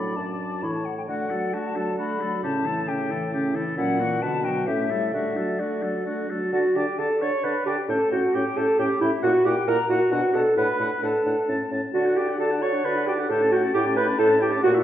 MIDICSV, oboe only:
0, 0, Header, 1, 2, 480
1, 0, Start_track
1, 0, Key_signature, 2, "major"
1, 0, Tempo, 451128
1, 1150, Time_signature, 3, 2, 24, 8
1, 4977, Tempo, 460829
1, 7857, Tempo, 449438
1, 15752, End_track
2, 0, Start_track
2, 0, Title_t, "Oboe"
2, 0, Program_c, 0, 68
2, 0, Note_on_c, 0, 74, 41
2, 649, Note_off_c, 0, 74, 0
2, 670, Note_on_c, 0, 73, 38
2, 906, Note_off_c, 0, 73, 0
2, 1153, Note_on_c, 0, 66, 41
2, 1388, Note_on_c, 0, 69, 40
2, 1404, Note_off_c, 0, 66, 0
2, 1635, Note_on_c, 0, 66, 37
2, 1651, Note_off_c, 0, 69, 0
2, 1871, Note_on_c, 0, 69, 37
2, 1887, Note_off_c, 0, 66, 0
2, 2103, Note_off_c, 0, 69, 0
2, 2110, Note_on_c, 0, 66, 40
2, 2349, Note_on_c, 0, 69, 42
2, 2365, Note_off_c, 0, 66, 0
2, 2582, Note_off_c, 0, 69, 0
2, 2588, Note_on_c, 0, 67, 44
2, 2829, Note_on_c, 0, 69, 43
2, 2845, Note_off_c, 0, 67, 0
2, 3063, Note_on_c, 0, 67, 46
2, 3079, Note_off_c, 0, 69, 0
2, 3306, Note_on_c, 0, 69, 46
2, 3322, Note_off_c, 0, 67, 0
2, 3541, Note_off_c, 0, 69, 0
2, 3547, Note_on_c, 0, 67, 47
2, 3780, Note_on_c, 0, 69, 49
2, 3796, Note_off_c, 0, 67, 0
2, 4009, Note_off_c, 0, 69, 0
2, 4016, Note_on_c, 0, 64, 52
2, 4256, Note_on_c, 0, 66, 50
2, 4272, Note_off_c, 0, 64, 0
2, 4486, Note_off_c, 0, 66, 0
2, 4493, Note_on_c, 0, 71, 47
2, 4732, Note_on_c, 0, 66, 45
2, 4748, Note_off_c, 0, 71, 0
2, 4962, Note_off_c, 0, 66, 0
2, 4968, Note_on_c, 0, 67, 51
2, 5211, Note_on_c, 0, 69, 45
2, 5226, Note_off_c, 0, 67, 0
2, 5447, Note_off_c, 0, 69, 0
2, 5453, Note_on_c, 0, 66, 41
2, 5696, Note_on_c, 0, 69, 41
2, 5712, Note_off_c, 0, 66, 0
2, 5932, Note_on_c, 0, 66, 37
2, 5947, Note_off_c, 0, 69, 0
2, 6175, Note_on_c, 0, 69, 39
2, 6190, Note_off_c, 0, 66, 0
2, 6413, Note_off_c, 0, 69, 0
2, 6420, Note_on_c, 0, 66, 37
2, 6667, Note_on_c, 0, 69, 38
2, 6683, Note_off_c, 0, 66, 0
2, 6900, Note_off_c, 0, 69, 0
2, 6906, Note_on_c, 0, 81, 47
2, 7014, Note_off_c, 0, 81, 0
2, 7153, Note_on_c, 0, 81, 44
2, 7259, Note_off_c, 0, 81, 0
2, 7392, Note_on_c, 0, 81, 43
2, 7497, Note_off_c, 0, 81, 0
2, 7628, Note_on_c, 0, 81, 45
2, 7733, Note_off_c, 0, 81, 0
2, 7866, Note_on_c, 0, 81, 47
2, 7972, Note_off_c, 0, 81, 0
2, 8105, Note_on_c, 0, 81, 48
2, 8211, Note_off_c, 0, 81, 0
2, 8339, Note_on_c, 0, 79, 53
2, 8446, Note_off_c, 0, 79, 0
2, 8583, Note_on_c, 0, 79, 50
2, 8690, Note_off_c, 0, 79, 0
2, 8824, Note_on_c, 0, 79, 50
2, 8930, Note_off_c, 0, 79, 0
2, 9057, Note_on_c, 0, 79, 50
2, 9164, Note_off_c, 0, 79, 0
2, 9298, Note_on_c, 0, 79, 58
2, 9405, Note_off_c, 0, 79, 0
2, 9536, Note_on_c, 0, 79, 56
2, 9641, Note_off_c, 0, 79, 0
2, 9763, Note_on_c, 0, 78, 64
2, 9871, Note_off_c, 0, 78, 0
2, 10002, Note_on_c, 0, 78, 59
2, 10109, Note_off_c, 0, 78, 0
2, 10239, Note_on_c, 0, 78, 56
2, 10346, Note_off_c, 0, 78, 0
2, 10481, Note_on_c, 0, 78, 58
2, 10588, Note_off_c, 0, 78, 0
2, 10711, Note_on_c, 0, 78, 59
2, 10821, Note_off_c, 0, 78, 0
2, 10953, Note_on_c, 0, 78, 56
2, 11063, Note_off_c, 0, 78, 0
2, 11204, Note_on_c, 0, 78, 54
2, 11313, Note_off_c, 0, 78, 0
2, 11455, Note_on_c, 0, 78, 49
2, 11562, Note_off_c, 0, 78, 0
2, 11694, Note_on_c, 0, 78, 48
2, 11803, Note_off_c, 0, 78, 0
2, 11936, Note_on_c, 0, 78, 44
2, 12045, Note_off_c, 0, 78, 0
2, 12177, Note_on_c, 0, 81, 49
2, 12286, Note_off_c, 0, 81, 0
2, 12419, Note_on_c, 0, 81, 46
2, 12528, Note_off_c, 0, 81, 0
2, 12665, Note_on_c, 0, 81, 48
2, 12787, Note_on_c, 0, 78, 47
2, 12803, Note_off_c, 0, 81, 0
2, 12910, Note_on_c, 0, 81, 48
2, 12926, Note_off_c, 0, 78, 0
2, 13034, Note_on_c, 0, 78, 46
2, 13050, Note_off_c, 0, 81, 0
2, 13150, Note_off_c, 0, 78, 0
2, 13154, Note_on_c, 0, 81, 48
2, 13269, Note_on_c, 0, 78, 48
2, 13285, Note_off_c, 0, 81, 0
2, 13389, Note_on_c, 0, 81, 49
2, 13405, Note_off_c, 0, 78, 0
2, 13517, Note_on_c, 0, 78, 47
2, 13533, Note_off_c, 0, 81, 0
2, 13631, Note_off_c, 0, 78, 0
2, 13637, Note_on_c, 0, 81, 49
2, 13758, Note_on_c, 0, 78, 54
2, 13774, Note_off_c, 0, 81, 0
2, 13875, Note_on_c, 0, 81, 52
2, 13891, Note_off_c, 0, 78, 0
2, 13999, Note_on_c, 0, 78, 50
2, 14015, Note_off_c, 0, 81, 0
2, 14112, Note_off_c, 0, 78, 0
2, 14119, Note_on_c, 0, 79, 60
2, 14240, Note_on_c, 0, 81, 53
2, 14256, Note_off_c, 0, 79, 0
2, 14354, Note_on_c, 0, 79, 60
2, 14370, Note_off_c, 0, 81, 0
2, 14474, Note_on_c, 0, 81, 55
2, 14490, Note_off_c, 0, 79, 0
2, 14585, Note_off_c, 0, 81, 0
2, 14591, Note_on_c, 0, 79, 54
2, 14705, Note_on_c, 0, 81, 55
2, 14721, Note_off_c, 0, 79, 0
2, 14822, Note_on_c, 0, 79, 59
2, 14838, Note_off_c, 0, 81, 0
2, 14943, Note_on_c, 0, 81, 55
2, 14960, Note_off_c, 0, 79, 0
2, 15049, Note_off_c, 0, 81, 0
2, 15055, Note_on_c, 0, 79, 62
2, 15172, Note_on_c, 0, 81, 64
2, 15188, Note_off_c, 0, 79, 0
2, 15291, Note_on_c, 0, 79, 66
2, 15307, Note_off_c, 0, 81, 0
2, 15407, Note_on_c, 0, 81, 56
2, 15423, Note_off_c, 0, 79, 0
2, 15520, Note_off_c, 0, 81, 0
2, 15526, Note_on_c, 0, 78, 70
2, 15649, Note_on_c, 0, 76, 62
2, 15665, Note_off_c, 0, 78, 0
2, 15752, Note_off_c, 0, 76, 0
2, 15752, End_track
0, 0, End_of_file